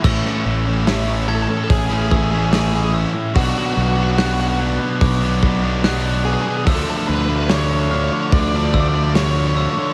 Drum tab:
CC |x---------------|----------------|----------------|
HH |----o---o---o---|o---o---o---o---|o---o---o---o---|
SD |-o--o-------o---|----o-------o---|----o-------o---|
BD |o-------o-o-----|o-------o-o-----|o-------o-o-----|